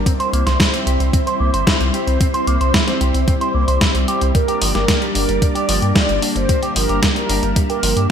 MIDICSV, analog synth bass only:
0, 0, Header, 1, 2, 480
1, 0, Start_track
1, 0, Tempo, 535714
1, 57, Time_signature, 4, 2, 24, 8
1, 7269, End_track
2, 0, Start_track
2, 0, Title_t, "Analog synth bass"
2, 0, Program_c, 0, 38
2, 296, Note_on_c, 0, 36, 91
2, 386, Note_off_c, 0, 36, 0
2, 416, Note_on_c, 0, 36, 83
2, 506, Note_off_c, 0, 36, 0
2, 776, Note_on_c, 0, 36, 89
2, 866, Note_off_c, 0, 36, 0
2, 897, Note_on_c, 0, 36, 79
2, 986, Note_off_c, 0, 36, 0
2, 1256, Note_on_c, 0, 36, 93
2, 1346, Note_off_c, 0, 36, 0
2, 1377, Note_on_c, 0, 31, 79
2, 1466, Note_off_c, 0, 31, 0
2, 1615, Note_on_c, 0, 36, 77
2, 1706, Note_off_c, 0, 36, 0
2, 1856, Note_on_c, 0, 36, 80
2, 1946, Note_off_c, 0, 36, 0
2, 2216, Note_on_c, 0, 36, 93
2, 2306, Note_off_c, 0, 36, 0
2, 2336, Note_on_c, 0, 36, 81
2, 2426, Note_off_c, 0, 36, 0
2, 2696, Note_on_c, 0, 36, 93
2, 2786, Note_off_c, 0, 36, 0
2, 2817, Note_on_c, 0, 36, 75
2, 2906, Note_off_c, 0, 36, 0
2, 3176, Note_on_c, 0, 36, 96
2, 3266, Note_off_c, 0, 36, 0
2, 3297, Note_on_c, 0, 36, 85
2, 3386, Note_off_c, 0, 36, 0
2, 3536, Note_on_c, 0, 36, 76
2, 3626, Note_off_c, 0, 36, 0
2, 3777, Note_on_c, 0, 36, 82
2, 3867, Note_off_c, 0, 36, 0
2, 4138, Note_on_c, 0, 31, 91
2, 4227, Note_off_c, 0, 31, 0
2, 4257, Note_on_c, 0, 31, 81
2, 4347, Note_off_c, 0, 31, 0
2, 4617, Note_on_c, 0, 31, 98
2, 4707, Note_off_c, 0, 31, 0
2, 4737, Note_on_c, 0, 31, 76
2, 4826, Note_off_c, 0, 31, 0
2, 5097, Note_on_c, 0, 31, 96
2, 5186, Note_off_c, 0, 31, 0
2, 5215, Note_on_c, 0, 43, 82
2, 5306, Note_off_c, 0, 43, 0
2, 5456, Note_on_c, 0, 31, 77
2, 5546, Note_off_c, 0, 31, 0
2, 5696, Note_on_c, 0, 31, 81
2, 5786, Note_off_c, 0, 31, 0
2, 6056, Note_on_c, 0, 31, 92
2, 6146, Note_off_c, 0, 31, 0
2, 6175, Note_on_c, 0, 31, 79
2, 6266, Note_off_c, 0, 31, 0
2, 6535, Note_on_c, 0, 31, 93
2, 6625, Note_off_c, 0, 31, 0
2, 6655, Note_on_c, 0, 31, 78
2, 6746, Note_off_c, 0, 31, 0
2, 7016, Note_on_c, 0, 31, 100
2, 7106, Note_off_c, 0, 31, 0
2, 7136, Note_on_c, 0, 43, 82
2, 7226, Note_off_c, 0, 43, 0
2, 7269, End_track
0, 0, End_of_file